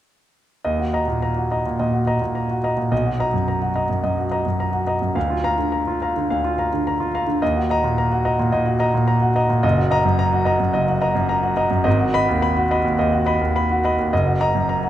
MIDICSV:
0, 0, Header, 1, 2, 480
1, 0, Start_track
1, 0, Key_signature, -6, "minor"
1, 0, Tempo, 567108
1, 542, Time_signature, 4, 2, 24, 8
1, 5334, Tempo, 556070
1, 10134, Tempo, 566038
1, 12705, End_track
2, 0, Start_track
2, 0, Title_t, "Grand piano"
2, 0, Program_c, 0, 0
2, 546, Note_on_c, 0, 75, 49
2, 549, Note_on_c, 0, 39, 52
2, 673, Note_on_c, 0, 66, 43
2, 684, Control_c, 0, 64, 127
2, 738, Note_off_c, 0, 75, 0
2, 791, Note_on_c, 0, 75, 42
2, 795, Note_on_c, 0, 82, 57
2, 862, Note_off_c, 0, 66, 0
2, 898, Note_off_c, 0, 75, 0
2, 900, Note_off_c, 0, 82, 0
2, 912, Note_on_c, 0, 46, 42
2, 1036, Note_on_c, 0, 82, 49
2, 1105, Note_off_c, 0, 46, 0
2, 1158, Note_on_c, 0, 66, 40
2, 1227, Note_off_c, 0, 82, 0
2, 1281, Note_on_c, 0, 75, 39
2, 1283, Note_on_c, 0, 82, 40
2, 1349, Note_off_c, 0, 66, 0
2, 1386, Note_off_c, 0, 75, 0
2, 1387, Note_off_c, 0, 82, 0
2, 1404, Note_on_c, 0, 46, 44
2, 1487, Note_off_c, 0, 39, 0
2, 1507, Note_off_c, 0, 46, 0
2, 1519, Note_on_c, 0, 46, 39
2, 1520, Note_on_c, 0, 75, 43
2, 1634, Note_on_c, 0, 66, 41
2, 1706, Note_off_c, 0, 46, 0
2, 1706, Note_off_c, 0, 75, 0
2, 1753, Note_on_c, 0, 75, 43
2, 1755, Note_on_c, 0, 82, 48
2, 1823, Note_off_c, 0, 66, 0
2, 1859, Note_off_c, 0, 75, 0
2, 1860, Note_off_c, 0, 82, 0
2, 1874, Note_on_c, 0, 46, 42
2, 1990, Note_on_c, 0, 82, 45
2, 2062, Note_off_c, 0, 46, 0
2, 2118, Note_on_c, 0, 66, 43
2, 2181, Note_off_c, 0, 82, 0
2, 2233, Note_on_c, 0, 75, 43
2, 2237, Note_on_c, 0, 82, 45
2, 2305, Note_off_c, 0, 66, 0
2, 2339, Note_off_c, 0, 75, 0
2, 2341, Note_off_c, 0, 82, 0
2, 2345, Note_on_c, 0, 46, 41
2, 2466, Note_on_c, 0, 35, 54
2, 2467, Note_off_c, 0, 46, 0
2, 2469, Note_on_c, 0, 75, 50
2, 2483, Control_c, 0, 64, 0
2, 2586, Note_on_c, 0, 66, 42
2, 2617, Control_c, 0, 64, 127
2, 2660, Note_off_c, 0, 75, 0
2, 2705, Note_on_c, 0, 75, 41
2, 2710, Note_on_c, 0, 82, 61
2, 2777, Note_off_c, 0, 66, 0
2, 2812, Note_off_c, 0, 75, 0
2, 2815, Note_off_c, 0, 82, 0
2, 2820, Note_on_c, 0, 42, 43
2, 2946, Note_on_c, 0, 82, 50
2, 3012, Note_off_c, 0, 42, 0
2, 3063, Note_on_c, 0, 66, 45
2, 3134, Note_off_c, 0, 82, 0
2, 3178, Note_on_c, 0, 82, 45
2, 3179, Note_on_c, 0, 75, 41
2, 3252, Note_off_c, 0, 66, 0
2, 3286, Note_off_c, 0, 82, 0
2, 3287, Note_off_c, 0, 75, 0
2, 3294, Note_on_c, 0, 42, 44
2, 3388, Note_off_c, 0, 35, 0
2, 3403, Note_off_c, 0, 42, 0
2, 3416, Note_on_c, 0, 42, 44
2, 3416, Note_on_c, 0, 75, 47
2, 3540, Note_on_c, 0, 66, 43
2, 3605, Note_off_c, 0, 42, 0
2, 3605, Note_off_c, 0, 75, 0
2, 3651, Note_on_c, 0, 75, 43
2, 3653, Note_on_c, 0, 82, 48
2, 3726, Note_off_c, 0, 66, 0
2, 3758, Note_off_c, 0, 75, 0
2, 3759, Note_off_c, 0, 82, 0
2, 3774, Note_on_c, 0, 42, 45
2, 3893, Note_on_c, 0, 82, 49
2, 3961, Note_off_c, 0, 42, 0
2, 4000, Note_on_c, 0, 66, 47
2, 4080, Note_off_c, 0, 82, 0
2, 4122, Note_on_c, 0, 75, 44
2, 4126, Note_on_c, 0, 82, 46
2, 4194, Note_off_c, 0, 66, 0
2, 4231, Note_off_c, 0, 75, 0
2, 4233, Note_off_c, 0, 82, 0
2, 4246, Note_on_c, 0, 42, 45
2, 4361, Note_on_c, 0, 38, 59
2, 4364, Note_on_c, 0, 77, 52
2, 4365, Note_off_c, 0, 42, 0
2, 4379, Control_c, 0, 64, 0
2, 4488, Note_on_c, 0, 65, 45
2, 4528, Control_c, 0, 64, 127
2, 4557, Note_off_c, 0, 77, 0
2, 4603, Note_on_c, 0, 77, 48
2, 4607, Note_on_c, 0, 82, 68
2, 4680, Note_off_c, 0, 65, 0
2, 4714, Note_off_c, 0, 77, 0
2, 4716, Note_off_c, 0, 82, 0
2, 4724, Note_on_c, 0, 50, 49
2, 4842, Note_on_c, 0, 82, 52
2, 4920, Note_off_c, 0, 50, 0
2, 4972, Note_on_c, 0, 65, 49
2, 5040, Note_off_c, 0, 82, 0
2, 5093, Note_on_c, 0, 77, 42
2, 5098, Note_on_c, 0, 82, 47
2, 5165, Note_off_c, 0, 65, 0
2, 5201, Note_off_c, 0, 77, 0
2, 5204, Note_off_c, 0, 82, 0
2, 5215, Note_on_c, 0, 50, 47
2, 5301, Note_off_c, 0, 38, 0
2, 5335, Note_on_c, 0, 77, 53
2, 5336, Note_on_c, 0, 38, 50
2, 5407, Note_off_c, 0, 50, 0
2, 5456, Note_on_c, 0, 65, 49
2, 5529, Note_off_c, 0, 77, 0
2, 5576, Note_on_c, 0, 77, 49
2, 5582, Note_on_c, 0, 82, 50
2, 5650, Note_off_c, 0, 65, 0
2, 5684, Note_off_c, 0, 77, 0
2, 5688, Note_off_c, 0, 82, 0
2, 5703, Note_on_c, 0, 50, 47
2, 5825, Note_on_c, 0, 82, 53
2, 5891, Note_off_c, 0, 50, 0
2, 5939, Note_on_c, 0, 65, 51
2, 6011, Note_off_c, 0, 82, 0
2, 6063, Note_on_c, 0, 77, 48
2, 6065, Note_on_c, 0, 82, 52
2, 6127, Note_off_c, 0, 65, 0
2, 6166, Note_off_c, 0, 77, 0
2, 6167, Note_off_c, 0, 82, 0
2, 6171, Note_on_c, 0, 50, 52
2, 6266, Note_off_c, 0, 38, 0
2, 6292, Note_off_c, 0, 50, 0
2, 6297, Note_on_c, 0, 39, 61
2, 6301, Note_on_c, 0, 75, 58
2, 6309, Control_c, 0, 64, 0
2, 6426, Note_on_c, 0, 66, 51
2, 6446, Control_c, 0, 64, 127
2, 6489, Note_off_c, 0, 75, 0
2, 6542, Note_on_c, 0, 75, 49
2, 6550, Note_on_c, 0, 82, 72
2, 6614, Note_off_c, 0, 66, 0
2, 6648, Note_off_c, 0, 75, 0
2, 6652, Note_off_c, 0, 82, 0
2, 6660, Note_on_c, 0, 46, 52
2, 6783, Note_on_c, 0, 82, 57
2, 6851, Note_off_c, 0, 46, 0
2, 6900, Note_on_c, 0, 66, 55
2, 6972, Note_off_c, 0, 82, 0
2, 7015, Note_on_c, 0, 75, 49
2, 7017, Note_on_c, 0, 82, 54
2, 7090, Note_off_c, 0, 66, 0
2, 7123, Note_off_c, 0, 75, 0
2, 7125, Note_off_c, 0, 82, 0
2, 7137, Note_on_c, 0, 46, 55
2, 7229, Note_off_c, 0, 39, 0
2, 7240, Note_off_c, 0, 46, 0
2, 7252, Note_on_c, 0, 75, 58
2, 7253, Note_on_c, 0, 46, 54
2, 7366, Note_on_c, 0, 66, 55
2, 7445, Note_off_c, 0, 75, 0
2, 7446, Note_off_c, 0, 46, 0
2, 7486, Note_on_c, 0, 75, 55
2, 7490, Note_on_c, 0, 82, 64
2, 7562, Note_off_c, 0, 66, 0
2, 7597, Note_off_c, 0, 75, 0
2, 7600, Note_off_c, 0, 82, 0
2, 7610, Note_on_c, 0, 46, 54
2, 7727, Note_on_c, 0, 82, 62
2, 7804, Note_off_c, 0, 46, 0
2, 7853, Note_on_c, 0, 66, 57
2, 7922, Note_off_c, 0, 82, 0
2, 7972, Note_on_c, 0, 75, 55
2, 7974, Note_on_c, 0, 82, 57
2, 8045, Note_off_c, 0, 66, 0
2, 8080, Note_off_c, 0, 75, 0
2, 8081, Note_off_c, 0, 82, 0
2, 8087, Note_on_c, 0, 46, 53
2, 8208, Note_on_c, 0, 30, 72
2, 8208, Note_on_c, 0, 75, 66
2, 8209, Note_off_c, 0, 46, 0
2, 8229, Control_c, 0, 64, 0
2, 8323, Note_on_c, 0, 66, 56
2, 8342, Control_c, 0, 64, 127
2, 8400, Note_off_c, 0, 75, 0
2, 8446, Note_on_c, 0, 75, 57
2, 8453, Note_on_c, 0, 82, 80
2, 8518, Note_off_c, 0, 66, 0
2, 8555, Note_off_c, 0, 75, 0
2, 8559, Note_off_c, 0, 82, 0
2, 8568, Note_on_c, 0, 42, 61
2, 8689, Note_on_c, 0, 82, 68
2, 8759, Note_off_c, 0, 42, 0
2, 8807, Note_on_c, 0, 66, 60
2, 8880, Note_off_c, 0, 82, 0
2, 8916, Note_on_c, 0, 75, 57
2, 8926, Note_on_c, 0, 82, 61
2, 8998, Note_off_c, 0, 66, 0
2, 9029, Note_off_c, 0, 75, 0
2, 9034, Note_off_c, 0, 82, 0
2, 9041, Note_on_c, 0, 42, 55
2, 9136, Note_off_c, 0, 30, 0
2, 9162, Note_on_c, 0, 30, 60
2, 9162, Note_on_c, 0, 75, 61
2, 9236, Note_off_c, 0, 42, 0
2, 9287, Note_on_c, 0, 66, 58
2, 9357, Note_off_c, 0, 75, 0
2, 9401, Note_on_c, 0, 75, 58
2, 9404, Note_on_c, 0, 82, 63
2, 9480, Note_off_c, 0, 66, 0
2, 9513, Note_off_c, 0, 75, 0
2, 9515, Note_off_c, 0, 82, 0
2, 9519, Note_on_c, 0, 42, 59
2, 9641, Note_on_c, 0, 82, 65
2, 9717, Note_off_c, 0, 42, 0
2, 9759, Note_on_c, 0, 66, 59
2, 9838, Note_off_c, 0, 82, 0
2, 9878, Note_on_c, 0, 75, 56
2, 9881, Note_on_c, 0, 82, 60
2, 9957, Note_off_c, 0, 66, 0
2, 9992, Note_off_c, 0, 75, 0
2, 9994, Note_off_c, 0, 82, 0
2, 9998, Note_on_c, 0, 42, 61
2, 10100, Note_off_c, 0, 30, 0
2, 10115, Note_on_c, 0, 75, 65
2, 10120, Note_on_c, 0, 32, 75
2, 10125, Note_off_c, 0, 42, 0
2, 10148, Control_c, 0, 64, 0
2, 10244, Note_on_c, 0, 66, 59
2, 10299, Control_c, 0, 64, 127
2, 10314, Note_off_c, 0, 75, 0
2, 10366, Note_on_c, 0, 75, 57
2, 10370, Note_on_c, 0, 83, 84
2, 10439, Note_off_c, 0, 66, 0
2, 10475, Note_off_c, 0, 75, 0
2, 10477, Note_off_c, 0, 83, 0
2, 10492, Note_on_c, 0, 39, 60
2, 10610, Note_on_c, 0, 83, 68
2, 10681, Note_off_c, 0, 39, 0
2, 10732, Note_on_c, 0, 66, 59
2, 10800, Note_off_c, 0, 83, 0
2, 10851, Note_on_c, 0, 75, 56
2, 10855, Note_on_c, 0, 83, 59
2, 10921, Note_off_c, 0, 66, 0
2, 10957, Note_off_c, 0, 75, 0
2, 10959, Note_off_c, 0, 83, 0
2, 10967, Note_on_c, 0, 39, 58
2, 11052, Note_off_c, 0, 32, 0
2, 11074, Note_off_c, 0, 39, 0
2, 11087, Note_on_c, 0, 39, 57
2, 11089, Note_on_c, 0, 75, 62
2, 11201, Note_on_c, 0, 66, 59
2, 11279, Note_off_c, 0, 39, 0
2, 11280, Note_off_c, 0, 75, 0
2, 11319, Note_on_c, 0, 75, 57
2, 11324, Note_on_c, 0, 83, 62
2, 11397, Note_off_c, 0, 66, 0
2, 11431, Note_off_c, 0, 75, 0
2, 11434, Note_off_c, 0, 83, 0
2, 11449, Note_on_c, 0, 39, 57
2, 11572, Note_on_c, 0, 83, 62
2, 11640, Note_off_c, 0, 39, 0
2, 11700, Note_on_c, 0, 66, 57
2, 11761, Note_off_c, 0, 83, 0
2, 11815, Note_on_c, 0, 75, 53
2, 11819, Note_on_c, 0, 83, 61
2, 11885, Note_off_c, 0, 66, 0
2, 11919, Note_off_c, 0, 75, 0
2, 11921, Note_off_c, 0, 83, 0
2, 11936, Note_on_c, 0, 39, 51
2, 12051, Note_off_c, 0, 39, 0
2, 12058, Note_on_c, 0, 30, 68
2, 12058, Note_on_c, 0, 75, 62
2, 12063, Control_c, 0, 64, 0
2, 12172, Note_on_c, 0, 66, 53
2, 12226, Control_c, 0, 64, 127
2, 12246, Note_off_c, 0, 75, 0
2, 12292, Note_on_c, 0, 82, 74
2, 12293, Note_on_c, 0, 75, 52
2, 12363, Note_off_c, 0, 66, 0
2, 12399, Note_off_c, 0, 82, 0
2, 12400, Note_off_c, 0, 75, 0
2, 12408, Note_on_c, 0, 42, 55
2, 12533, Note_on_c, 0, 82, 60
2, 12602, Note_off_c, 0, 42, 0
2, 12655, Note_on_c, 0, 66, 54
2, 12705, Note_off_c, 0, 30, 0
2, 12705, Note_off_c, 0, 66, 0
2, 12705, Note_off_c, 0, 82, 0
2, 12705, End_track
0, 0, End_of_file